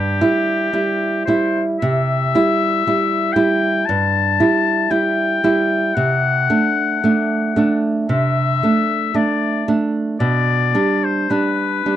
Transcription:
0.00 0.20 G2 medium
0.00 1.25 G4 medium
0.21 0.70 G3 soft
0.21 0.70 E4 medium
0.73 1.23 G3 soft
0.73 1.23 E4 soft
1.26 1.78 G3 soft
1.26 1.78 E4 medium
1.26 1.61 C5 medium
1.79 2.33 C3 medium
1.79 3.34 E5 medium
2.35 2.82 G3 medium
2.35 2.82 E4 medium
2.87 3.33 G3 soft
2.87 3.34 E4 medium
3.33 3.83 G3 medium
3.33 3.83 E4 medium
3.33 3.87 G5 medium
3.85 4.39 G2 medium
3.85 4.92 A5 medium
4.40 4.88 G3 soft
4.40 4.88 E4 medium
4.90 5.39 G3 soft
4.90 5.39 E4 soft
4.90 5.96 G5 medium
5.44 5.92 G3 medium
5.44 5.92 E4 medium
5.95 6.48 C3 medium
5.95 7.82 F#5 loud
6.50 6.99 A3 soft
6.50 6.99 D4 medium
7.04 7.53 A3 soft
7.04 7.53 D4 soft
7.56 8.06 A3 soft
7.56 8.06 D4 medium
8.09 8.62 C3 medium
8.09 9.17 E5 medium
8.63 9.12 A3 soft
8.63 9.12 D4 soft
9.14 9.63 A3 soft
9.14 9.63 D4 soft
9.14 9.67 D5 medium
9.68 10.17 A3 soft
9.68 10.17 D4 soft
10.20 10.74 B2 medium
10.20 11.05 D5 medium
10.75 11.27 G3 soft
10.75 11.26 D4 medium
11.04 11.32 C5 medium
11.30 11.81 G3 soft
11.30 11.81 D4 soft
11.30 11.96 B4 medium
11.86 11.96 G3 soft
11.86 11.96 D4 soft

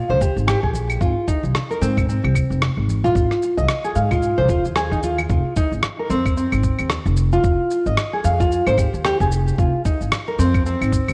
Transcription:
0.09 0.26 C#2 loud
0.09 0.20 C5 medium
0.09 high conga medium
0.09 low conga medium
0.21 0.36 G4 medium
0.21 kick loud
0.21 muted conga medium
0.21 shaker medium
0.36 0.53 G#1 medium
0.36 high conga soft
0.36 shaker soft
0.48 0.62 G4 loud
0.48 cross-stick medium
0.48 shaker soft
0.63 0.95 A#1 medium
0.63 0.70 G#4 medium
0.63 kick medium
0.74 muted conga soft
0.74 shaker medium
0.90 claves medium
0.90 shaker soft
1.01 1.12 G#1 loud
1.01 1.27 F4 medium
1.01 kick loud
1.01 shaker soft
1.28 1.43 D#4 loud
1.28 kick medium
1.28 shaker medium
1.44 1.51 C2 medium
1.44 muted conga medium
1.44 shaker soft
1.55 cross-stick medium
1.55 shaker soft
1.70 1.80 A#4 medium
1.70 shaker soft
1.81 2.16 G#2 medium
1.81 2.07 C4 loud
1.81 shaker medium
1.97 kick loud
1.97 low conga medium
1.97 claves medium
1.97 shaker soft
2.09 2.61 C4 medium
2.09 shaker soft
2.24 2.41 C2 medium
2.24 muted conga medium
2.24 high conga medium
2.24 claves medium
2.35 kick medium
2.35 claves medium
2.35 shaker medium
2.50 2.67 F1 medium
2.50 shaker soft
2.62 cross-stick loud
2.62 shaker soft
2.77 3.09 G#1 medium
2.88 high conga medium
2.88 shaker medium
3.04 3.56 F4 loud
3.04 low conga medium
3.04 shaker soft
3.15 3.26 G#1 medium
3.15 kick loud
3.15 shaker soft
3.31 cross-stick soft
3.31 shaker soft
3.42 shaker medium
3.57 3.65 C2 medium
3.57 3.83 D#5 medium
3.57 muted conga medium
3.57 shaker soft
3.69 cross-stick loud
3.69 shaker soft
3.84 3.95 G#4 medium
3.84 shaker soft
3.96 4.30 G#2 medium
3.96 4.10 F5 medium
3.96 shaker medium
4.11 4.36 F4 loud
4.11 kick loud
4.11 low conga medium
4.11 claves medium
4.11 shaker soft
4.22 shaker soft
4.38 4.48 C2 medium
4.38 4.48 C5 loud
4.38 high conga medium
4.38 low conga medium
4.48 4.60 F1 medium
4.48 4.63 F4 loud
4.48 kick loud
4.48 muted conga medium
4.48 shaker medium
4.64 5.24 D#2 medium
4.64 high conga soft
4.64 shaker soft
4.76 4.91 G#4 medium
4.76 cross-stick loud
4.76 shaker soft
4.91 5.02 D#4 medium
4.91 kick medium
4.91 high conga medium
4.91 shaker soft
5.03 5.18 F4 loud
5.03 muted conga soft
5.03 shaker medium
5.18 muted conga soft
5.18 claves medium
5.18 shaker soft
5.29 5.40 F1 loud
5.29 5.55 F4 medium
5.29 kick loud
5.29 shaker soft
5.56 5.71 D#4 loud
5.56 kick loud
5.56 shaker medium
5.71 5.79 G#1 medium
5.71 shaker soft
5.83 cross-stick loud
5.83 shaker soft
5.99 6.09 A#4 medium
6.09 6.44 F2 medium
6.09 6.36 C4 loud
6.09 shaker medium
6.25 kick loud
6.25 claves medium
6.25 shaker soft
6.37 6.89 C4 medium
6.37 shaker soft
6.52 6.69 G#1 medium
6.52 claves medium
6.52 shaker soft
6.63 kick medium
6.63 shaker medium
6.79 6.96 D#2 medium
6.79 claves medium
6.79 shaker soft
6.90 cross-stick loud
6.90 shaker soft
7.06 7.38 F1 loud
7.06 shaker soft
7.17 shaker medium
7.32 7.85 F4 loud
7.32 shaker soft
7.44 7.54 F1 medium
7.44 kick loud
7.44 shaker soft
7.71 shaker medium
7.86 7.94 G#1 medium
7.86 8.12 D#5 medium
7.86 shaker soft
7.97 cross-stick loud
7.97 shaker soft
8.13 8.24 G#4 medium
8.24 8.59 F2 medium
8.24 8.38 F5 medium
8.24 shaker medium
8.40 8.65 F4 loud
8.40 kick loud
8.40 shaker soft
8.51 shaker soft
8.66 8.83 G#1 loud
8.66 8.77 C5 loud
8.66 claves medium
8.66 shaker soft
8.78 8.93 G4 medium
8.78 kick loud
8.78 claves medium
8.78 shaker medium
8.93 9.10 D#2 medium
8.93 shaker soft
9.05 9.19 G4 loud
9.05 cross-stick loud
9.05 shaker soft
9.20 9.53 F1 medium
9.20 9.27 G#4 medium
9.20 kick medium
9.20 shaker soft
9.32 shaker medium
9.48 shaker soft
9.58 9.69 F1 loud
9.58 9.84 F4 medium
9.58 kick loud
9.58 shaker soft
9.85 10.00 D#4 loud
9.85 kick loud
9.85 shaker medium
10.01 10.08 G#1 medium
10.01 shaker soft
10.12 cross-stick loud
10.12 shaker soft
10.28 10.38 A#4 medium
10.38 10.73 F2 loud
10.38 10.64 C4 loud
10.38 shaker medium
10.54 kick loud
10.54 claves medium
10.54 shaker soft
10.66 11.13 C4 medium
10.66 shaker soft
10.81 10.98 G#1 loud
10.81 claves medium
10.81 shaker soft
10.92 kick medium
10.92 shaker medium
11.08 11.13 D#2 medium
11.08 claves medium
11.08 shaker soft

